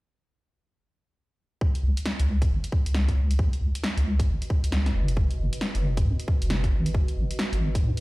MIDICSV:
0, 0, Header, 1, 4, 480
1, 0, Start_track
1, 0, Tempo, 444444
1, 1741, Time_signature, 4, 2, 24, 8
1, 8643, End_track
2, 0, Start_track
2, 0, Title_t, "Ambient pad"
2, 0, Program_c, 0, 92
2, 1735, Note_on_c, 0, 66, 86
2, 2117, Note_on_c, 0, 71, 79
2, 2157, Note_on_c, 0, 75, 77
2, 8643, Note_off_c, 0, 66, 0
2, 8643, Note_off_c, 0, 71, 0
2, 8643, Note_off_c, 0, 75, 0
2, 8643, End_track
3, 0, Start_track
3, 0, Title_t, "Wobble bass"
3, 0, Program_c, 1, 39
3, 1980, Note_on_c, 1, 37, 91
3, 2100, Note_off_c, 1, 37, 0
3, 2373, Note_on_c, 1, 37, 90
3, 2673, Note_off_c, 1, 37, 0
3, 2701, Note_on_c, 1, 32, 76
3, 2820, Note_off_c, 1, 32, 0
3, 3091, Note_on_c, 1, 37, 81
3, 3392, Note_off_c, 1, 37, 0
3, 3420, Note_on_c, 1, 37, 94
3, 3762, Note_off_c, 1, 37, 0
3, 3902, Note_on_c, 1, 37, 95
3, 4021, Note_off_c, 1, 37, 0
3, 4290, Note_on_c, 1, 37, 85
3, 4592, Note_off_c, 1, 37, 0
3, 4622, Note_on_c, 1, 32, 77
3, 4741, Note_off_c, 1, 32, 0
3, 5009, Note_on_c, 1, 37, 80
3, 5311, Note_off_c, 1, 37, 0
3, 5341, Note_on_c, 1, 30, 87
3, 5683, Note_off_c, 1, 30, 0
3, 5819, Note_on_c, 1, 30, 97
3, 5940, Note_off_c, 1, 30, 0
3, 6210, Note_on_c, 1, 30, 85
3, 6512, Note_off_c, 1, 30, 0
3, 6538, Note_on_c, 1, 42, 82
3, 6659, Note_off_c, 1, 42, 0
3, 6928, Note_on_c, 1, 30, 80
3, 7231, Note_off_c, 1, 30, 0
3, 7259, Note_on_c, 1, 32, 87
3, 7601, Note_off_c, 1, 32, 0
3, 7738, Note_on_c, 1, 32, 93
3, 7859, Note_off_c, 1, 32, 0
3, 8126, Note_on_c, 1, 32, 87
3, 8430, Note_off_c, 1, 32, 0
3, 8457, Note_on_c, 1, 44, 79
3, 8579, Note_off_c, 1, 44, 0
3, 8643, End_track
4, 0, Start_track
4, 0, Title_t, "Drums"
4, 1742, Note_on_c, 9, 36, 107
4, 1850, Note_off_c, 9, 36, 0
4, 1891, Note_on_c, 9, 42, 33
4, 1999, Note_off_c, 9, 42, 0
4, 2130, Note_on_c, 9, 42, 60
4, 2220, Note_on_c, 9, 38, 111
4, 2238, Note_off_c, 9, 42, 0
4, 2328, Note_off_c, 9, 38, 0
4, 2371, Note_on_c, 9, 42, 51
4, 2479, Note_off_c, 9, 42, 0
4, 2611, Note_on_c, 9, 36, 100
4, 2612, Note_on_c, 9, 42, 59
4, 2719, Note_off_c, 9, 36, 0
4, 2720, Note_off_c, 9, 42, 0
4, 2851, Note_on_c, 9, 42, 49
4, 2941, Note_on_c, 9, 36, 99
4, 2959, Note_off_c, 9, 42, 0
4, 3049, Note_off_c, 9, 36, 0
4, 3091, Note_on_c, 9, 42, 62
4, 3181, Note_on_c, 9, 38, 118
4, 3199, Note_off_c, 9, 42, 0
4, 3289, Note_off_c, 9, 38, 0
4, 3331, Note_on_c, 9, 36, 57
4, 3332, Note_on_c, 9, 42, 34
4, 3439, Note_off_c, 9, 36, 0
4, 3440, Note_off_c, 9, 42, 0
4, 3572, Note_on_c, 9, 42, 59
4, 3661, Note_on_c, 9, 36, 116
4, 3680, Note_off_c, 9, 42, 0
4, 3769, Note_off_c, 9, 36, 0
4, 3814, Note_on_c, 9, 42, 32
4, 3922, Note_off_c, 9, 42, 0
4, 4052, Note_on_c, 9, 42, 57
4, 4142, Note_on_c, 9, 38, 114
4, 4160, Note_off_c, 9, 42, 0
4, 4250, Note_off_c, 9, 38, 0
4, 4293, Note_on_c, 9, 42, 48
4, 4401, Note_off_c, 9, 42, 0
4, 4530, Note_on_c, 9, 36, 103
4, 4532, Note_on_c, 9, 42, 59
4, 4638, Note_off_c, 9, 36, 0
4, 4640, Note_off_c, 9, 42, 0
4, 4772, Note_on_c, 9, 42, 47
4, 4861, Note_on_c, 9, 36, 103
4, 4880, Note_off_c, 9, 42, 0
4, 4969, Note_off_c, 9, 36, 0
4, 5010, Note_on_c, 9, 42, 60
4, 5101, Note_on_c, 9, 38, 118
4, 5118, Note_off_c, 9, 42, 0
4, 5209, Note_off_c, 9, 38, 0
4, 5251, Note_on_c, 9, 38, 60
4, 5251, Note_on_c, 9, 42, 34
4, 5359, Note_off_c, 9, 38, 0
4, 5359, Note_off_c, 9, 42, 0
4, 5491, Note_on_c, 9, 42, 58
4, 5581, Note_on_c, 9, 36, 116
4, 5599, Note_off_c, 9, 42, 0
4, 5689, Note_off_c, 9, 36, 0
4, 5730, Note_on_c, 9, 42, 32
4, 5838, Note_off_c, 9, 42, 0
4, 5970, Note_on_c, 9, 42, 57
4, 6060, Note_on_c, 9, 38, 115
4, 6078, Note_off_c, 9, 42, 0
4, 6168, Note_off_c, 9, 38, 0
4, 6209, Note_on_c, 9, 42, 48
4, 6317, Note_off_c, 9, 42, 0
4, 6450, Note_on_c, 9, 36, 112
4, 6451, Note_on_c, 9, 42, 56
4, 6558, Note_off_c, 9, 36, 0
4, 6559, Note_off_c, 9, 42, 0
4, 6691, Note_on_c, 9, 42, 47
4, 6781, Note_on_c, 9, 36, 107
4, 6799, Note_off_c, 9, 42, 0
4, 6889, Note_off_c, 9, 36, 0
4, 6931, Note_on_c, 9, 42, 60
4, 7021, Note_on_c, 9, 38, 120
4, 7039, Note_off_c, 9, 42, 0
4, 7129, Note_off_c, 9, 38, 0
4, 7170, Note_on_c, 9, 36, 60
4, 7170, Note_on_c, 9, 42, 34
4, 7278, Note_off_c, 9, 36, 0
4, 7278, Note_off_c, 9, 42, 0
4, 7409, Note_on_c, 9, 42, 58
4, 7501, Note_on_c, 9, 36, 114
4, 7517, Note_off_c, 9, 42, 0
4, 7609, Note_off_c, 9, 36, 0
4, 7650, Note_on_c, 9, 42, 32
4, 7758, Note_off_c, 9, 42, 0
4, 7891, Note_on_c, 9, 42, 61
4, 7980, Note_on_c, 9, 38, 113
4, 7999, Note_off_c, 9, 42, 0
4, 8088, Note_off_c, 9, 38, 0
4, 8130, Note_on_c, 9, 42, 47
4, 8238, Note_off_c, 9, 42, 0
4, 8370, Note_on_c, 9, 36, 103
4, 8372, Note_on_c, 9, 42, 57
4, 8478, Note_off_c, 9, 36, 0
4, 8480, Note_off_c, 9, 42, 0
4, 8643, End_track
0, 0, End_of_file